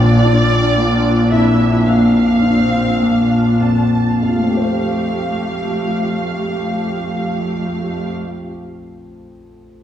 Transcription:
Already playing: grand piano A#1, cello section A#2, viola section D4 F4, violin section D5
0.25 grand piano D4, viola section F4
0.78 grand piano A#3, viola section D4 F4
1.31 grand piano F2, viola section E4, violin section E5
1.86 grand piano A#3, viola section D4, violin section F5
2.42 viola section C4, grand piano D4
3.00 grand piano A#3, viola section D4 F4
3.60 grand piano F2, violin section A5
4.22 grand piano F2, cello section F2, viola section A3 G4, violin section F5
4.29 grand piano F3
4.36 grand piano A3
4.43 grand piano C4
4.50 grand piano G4
4.57 grand piano C5

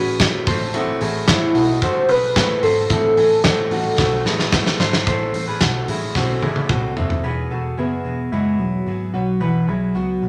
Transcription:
Already playing: picked electric bass A1, steel-string acoustic guitar C#4 E4 G#4, soft synth lead F#4, clean electric guitar B4
0.19 steel-string acoustic guitar A3 C#4 E4 G#4, kick, snare, closed hi-hat
0.47 picked electric bass A1, steel-string acoustic guitar A3 C4 F#4 A4, clean electric guitar C5, kick, open hi-hat
0.73 steel-string acoustic guitar A2 E3 A3 C4 F#4 A4, clean electric guitar E4, closed hi-hat
1.00 picked electric bass A1, steel-string acoustic guitar A3 C4 F#4 A4, clean electric guitar E4 G#4, open hi-hat
1.28 picked electric bass A1, steel-string acoustic guitar A2 E3 A3 C4 F#4 A4, soft synth lead E4, kick, snare, closed hi-hat
1.54 picked electric bass B1, steel-string acoustic guitar A3 C4 F#4 A4, clean electric guitar D#4, open hi-hat
1.82 picked electric bass A1, steel-string acoustic guitar A3 C4 F#4 A4, soft synth lead C5, kick, closed hi-hat
2.09 picked electric bass B1, steel-string acoustic guitar A3 C4 F#4 A4, clean electric guitar G#4 B4, soft synth lead B4, open hi-hat
2.36 picked electric bass A1, steel-string acoustic guitar A2 E3 A3 C4 F#4 A4, kick, snare, closed hi-hat
2.63 picked electric bass G#1, steel-string acoustic guitar A3 C4 F#4 A4, soft synth lead A4, clean electric guitar C5, open hi-hat
2.90 picked electric bass A1, steel-string acoustic guitar A2 E3 A3 C4 F#4 A4, clean electric guitar E4, kick, closed hi-hat
3.17 picked electric bass A1, steel-string acoustic guitar A3 C4 F#4 A4, clean electric guitar E4 G#5, open hi-hat
3.44 picked electric bass A1, steel-string acoustic guitar A2 E3 A3 C4 F#4 A4, kick, snare, closed hi-hat
3.71 picked electric bass A1, steel-string acoustic guitar A3 C4 F#4 A4, clean electric guitar D#4, open hi-hat
3.98 picked electric bass B1, steel-string acoustic guitar A3 C4 F#4 A4, kick, snare
4.25 picked electric bass A1, steel-string acoustic guitar A3 C4 F#4 A4, clean electric guitar G#4 B4, snare
4.39 snare
4.52 steel-string acoustic guitar A2 E3 A3 C4 F#4 A4, kick, snare
4.66 snare
4.79 picked electric bass G#1, steel-string acoustic guitar A3 C4 F#4 A4, clean electric guitar C5, snare
4.93 snare
5.07 picked electric bass A1, steel-string acoustic guitar A2 E3 A3 C4 F#4 A4, clean electric guitar C5, kick, closed hi-hat
5.34 picked electric bass A1, steel-string acoustic guitar A3 C4 F#4 A4, open hi-hat
5.48 clean electric guitar G#4 B4
5.61 picked electric bass B1, steel-string acoustic guitar A3 C4 F#4 A4, kick, snare, closed hi-hat
5.88 picked electric bass A1, steel-string acoustic guitar A3 C4 F#4 A4, clean electric guitar E4 G#4, open hi-hat
6.15 picked electric bass B1, steel-string acoustic guitar A2 E3 A3 C4 F#4 A4, kick, snare
6.42 picked electric bass A1, steel-string acoustic guitar A3 C4 F#4 A4, clean electric guitar E4 G#4, high tom
6.56 high tom
6.69 picked electric bass C2, steel-string acoustic guitar A3 C4 F#4 A4, kick, mid tom
6.96 picked electric bass F#1, steel-string acoustic guitar A3 C4 F#4 A4, clean electric guitar E4, floor tom
7.10 floor tom
7.24 picked electric bass E1, steel-string acoustic guitar E3 F#3 B3 F#4 G#4, clean electric guitar B4
7.50 picked electric bass E1, steel-string acoustic guitar B3 F#4 G#4, clean electric guitar A4
7.77 picked electric bass F#1, steel-string acoustic guitar F#3 B3 F#4 G#4, soft synth lead B3, clean electric guitar E4
8.05 picked electric bass E1, steel-string acoustic guitar B3 F#4 G#4
8.32 picked electric bass F#1, steel-string acoustic guitar E3 F#3 B3 F#4 G#4, soft synth lead G#3, clean electric guitar E4
8.59 picked electric bass E1, soft synth lead F#3, steel-string acoustic guitar B3 F#4 G#4
8.86 picked electric bass G#1, steel-string acoustic guitar F#3 B3 F#4 G#4
9.13 picked electric bass B1, soft synth lead F#3, steel-string acoustic guitar F#3 B3 F#4 B4
9.40 picked electric bass B1, steel-string acoustic guitar B2 E3 F#3 B3 F#4 B4, soft synth lead E3
9.67 picked electric bass B1, soft synth lead F#3, steel-string acoustic guitar F#3 B3 F#4 B4, clean electric guitar E4 G#4
9.95 picked electric bass C#2, steel-string acoustic guitar F#3 B3 F#4 B4
10.22 picked electric bass B1, steel-string acoustic guitar F#3 B3 F#4 B4

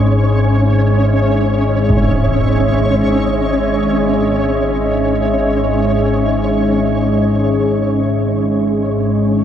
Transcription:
Already playing: synth drone G#1 G#2, ambient pad G#3 C#4 G#4 D#5 E5, synth texture C#4 C#5
1.90 impact

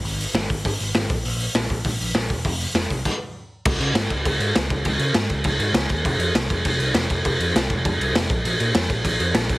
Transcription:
0.04 picked electric bass G#1, open hi-hat
0.20 open hi-hat
0.34 picked electric bass G#1, snare, open hi-hat
0.50 picked electric bass G#1, kick, open hi-hat
0.65 picked electric bass G#1, kick, open hi-hat
0.80 picked electric bass G#1, open hi-hat
0.94 picked electric bass G#1, snare, open hi-hat
1.09 picked electric bass A#1, kick, open hi-hat
1.25 picked electric bass A#1, open hi-hat
1.40 open hi-hat
1.55 picked electric bass A#1, snare, open hi-hat
1.70 picked electric bass A#1, kick, open hi-hat
1.84 picked electric bass A#1, kick, open hi-hat
2.00 picked electric bass A#1, open hi-hat
2.15 picked electric bass A#1, snare, open hi-hat
2.30 picked electric bass E1, kick, open hi-hat
2.44 picked electric bass F1, kick, open hi-hat
2.60 open hi-hat
2.74 picked electric bass F1, snare, open hi-hat
2.90 picked electric bass C2, kick, open hi-hat
3.05 kick, crash
3.65 picked electric bass C#2, kick, crash
3.80 picked electric bass C#3, crash
3.94 picked electric bass G#2, snare, crash
4.10 picked electric bass C#2, kick, crash
4.25 picked electric bass C#2, kick, crash
4.40 picked electric bass G#2, crash
4.55 picked electric bass C#2, snare, crash
4.70 picked electric bass C#2, kick, crash
4.85 picked electric bass C#2, kick, crash
4.99 picked electric bass C#3, crash
5.14 picked electric bass G#2, snare, crash
5.29 picked electric bass C#2, kick, crash
5.44 picked electric bass C#2, kick, crash
5.59 picked electric bass G#2, crash
5.73 picked electric bass C#2, snare, crash
5.89 picked electric bass D#2, kick, crash
6.04 picked electric bass F1, kick, crash
6.18 picked electric bass F2, crash
6.34 picked electric bass C2, snare, crash
6.50 picked electric bass F1, kick, crash
6.65 picked electric bass F1, kick, crash
6.79 picked electric bass C2, crash
6.94 picked electric bass F1, snare, crash
7.10 picked electric bass F1, kick, crash
7.25 picked electric bass F1, kick, crash
7.39 picked electric bass F2, crash
7.55 picked electric bass C2, snare, crash
7.70 picked electric bass F1, kick, crash
7.85 picked electric bass F1, kick, crash
7.99 picked electric bass C2, crash
8.14 picked electric bass F1, snare, crash
8.30 picked electric bass A#1, kick, crash
8.44 picked electric bass A#1, crash
8.60 picked electric bass A#2, crash
8.75 picked electric bass F2, snare, crash
8.89 picked electric bass A#1, kick, crash
9.04 picked electric bass A#1, kick, crash
9.20 picked electric bass F2, crash
9.34 picked electric bass A#1, snare, crash
9.50 picked electric bass A#1, kick, crash

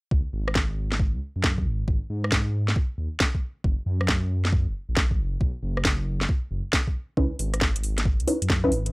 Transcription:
0.11 detuned saw bass C#2, kick
0.33 detuned saw bass G#1
0.48 cross-stick
0.55 kick, snare
0.92 snare
1.00 kick
1.14 detuned saw bass C#2
1.36 detuned saw bass F#2
1.44 kick, snare
1.58 kick
1.66 detuned saw bass G#1
1.88 detuned saw bass G#1, kick
2.10 detuned saw bass G#2
2.24 cross-stick
2.32 kick, snare
2.68 snare
2.76 kick
2.98 detuned saw bass D#2
3.20 kick, snare
3.35 kick
3.64 detuned saw bass F#1, kick
3.86 detuned saw bass F#2
4.01 cross-stick
4.08 kick, snare
4.45 snare
4.53 kick
4.67 detuned saw bass F#1
4.89 detuned saw bass A#1
4.97 kick, snare
5.11 kick
5.19 detuned saw bass F#1
5.41 detuned saw bass B1, kick
5.63 detuned saw bass F#1
5.77 cross-stick
5.85 kick, snare
6.21 snare
6.29 kick
6.51 detuned saw bass F#1
6.73 kick, snare
6.87 kick
7.17 detuned saw bass C#2, synth stab C#4 D#4 E4 B4, kick
7.39 detuned saw bass G#1, open hi-hat
7.54 cross-stick, closed hi-hat
7.61 kick, snare
7.76 closed hi-hat
7.83 open hi-hat
7.98 snare, closed hi-hat
8.05 kick
8.20 detuned saw bass C#2, closed hi-hat
8.27 synth stab C#4 D#4 E4 B4, open hi-hat
8.42 detuned saw bass F#2, closed hi-hat
8.50 kick, snare
8.64 synth stab C#4 D#4 E4 B4, kick
8.72 detuned saw bass G#1, open hi-hat
8.86 closed hi-hat

